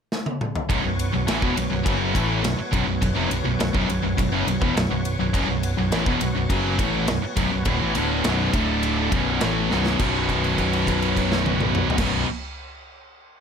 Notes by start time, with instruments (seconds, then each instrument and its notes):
0.12 snare
0.26 high tom
0.41 mid tom
0.56 floor tom
0.69 fingered electric bass B0, overdriven electric guitar B1 F#2, tonewheel organ B3 F#4 C#5, kick, ride
0.84 fingered electric bass B0, overdriven electric guitar B1 F#2
0.99 ride
1.13 fingered electric bass B0, overdriven electric guitar B1 F#2
1.27 fingered electric bass A1, overdriven electric guitar A2 E3, snare, ride
1.42 fingered electric bass E1, overdriven electric guitar E2 B2, kick
1.57 fingered electric bass B0, overdriven electric guitar B1 F#2, ride
1.71 fingered electric bass B0, overdriven electric guitar B1 F#2
1.85 fingered electric bass F#1, overdriven electric guitar F#2 C#3 F#3, kick, ride
2.13 fingered electric bass A1, overdriven electric guitar A2 E3 A3, kick, ride
2.43 fingered electric bass B0, overdriven electric guitar B1 F#2, snare, ride
2.58 muted overdriven electric guitar stroke, muted distorted electric guitar stroke, muted fingered electric bass stroke
2.72 fingered electric bass B0, overdriven electric guitar B1 F#2, kick, ride
2.87 fingered electric bass B0, overdriven electric guitar B1 F#2
3.02 fingered electric bass B0, overdriven electric guitar B1 F#2, kick, ride
3.16 fingered electric bass F1, overdriven electric guitar F2 C3
3.30 fingered electric bass B0, overdriven electric guitar B1 F#2, ride
3.45 fingered electric bass B0, overdriven electric guitar B1 F#2
3.60 fingered electric bass B0, overdriven electric guitar B1 F#2, snare, ride
3.74 fingered electric bass B0, overdriven electric guitar B1 F#2, kick
3.89 fingered electric bass B0, overdriven electric guitar B1 F#2, ride
4.03 fingered electric bass B0, overdriven electric guitar B1 F#2
4.17 fingered electric bass B0, overdriven electric guitar B1 F#2, kick, ride
4.32 fingered electric bass F#1, overdriven electric guitar F#2 C#3
4.47 fingered electric bass B0, overdriven electric guitar B1 F#2, ride
4.62 fingered electric bass E1, overdriven electric guitar E2 B2, kick
4.76 fingered electric bass B0, overdriven electric guitar B1 F#2, snare, ride
4.91 fingered electric bass B0, overdriven electric guitar B1 F#2
5.05 ride
5.19 fingered electric bass B0, overdriven electric guitar B1 F#2
5.33 fingered electric bass B0, overdriven electric guitar B1 F#2, kick, ride
5.48 fingered electric bass B0, overdriven electric guitar B1 F#2
5.63 ride
5.77 fingered electric bass B0, overdriven electric guitar B1 F#2
5.91 fingered electric bass A1, overdriven electric guitar A2 E3, snare, ride
6.06 fingered electric bass E1, overdriven electric guitar E2 B2, kick, snare
6.21 fingered electric bass B0, overdriven electric guitar B1 F#2, ride
6.35 fingered electric bass B0, overdriven electric guitar B1 F#2
6.50 fingered electric bass F#1, overdriven electric guitar F#2 C#3 F#3, kick, ride
6.78 fingered electric bass A1, overdriven electric guitar A2 E3 A3, kick, ride
7.08 fingered electric bass B0, overdriven electric guitar B1 F#2, snare, ride
7.22 muted distorted electric guitar stroke, muted overdriven electric guitar stroke, muted fingered electric bass stroke
7.36 fingered electric bass B0, overdriven electric guitar B1 F#2, kick, ride
7.51 fingered electric bass B0, overdriven electric guitar B1 F#2
7.65 fingered electric bass D1, overdriven electric guitar D2 A2, kick, ride
7.81 fingered electric bass A1, overdriven electric guitar A2 E3
7.95 fingered electric bass D1, overdriven electric guitar D2 A2 D3, ride
8.24 fingered electric bass B0, overdriven electric guitar B1 F#2 B2, snare, ride
8.40 snare
8.53 fingered electric bass D1, overdriven electric guitar D2 A2 D3, tonewheel organ D4 A4 E5, kick, ride
8.83 ride
9.11 fingered electric bass B0, overdriven electric guitar B1 F#2 B2, tonewheel organ B3 F#4 C#5, kick, ride
9.41 fingered electric bass A1, overdriven electric guitar A2 E3 A3, snare, ride
9.70 fingered electric bass B0, overdriven electric guitar B1 F#2 B2, snare
9.86 snare
9.98 fingered electric bass B0, overdriven electric guitar B1 F#2, tonewheel organ B3 F#4 C#5, kick, crash
10.02 overdriven electric guitar B2
10.29 kick, crash
10.44 crash
10.58 kick, crash
10.73 crash
10.87 kick, crash
11.02 crash
11.17 kick, crash
11.32 snare
11.46 high tom
11.60 mid tom
11.75 mid tom
11.90 floor tom
11.97 fingered electric bass B0, overdriven electric guitar B1 F#2, tonewheel organ B3 F#4 C#5, kick, snare, crash
12.01 overdriven electric guitar B2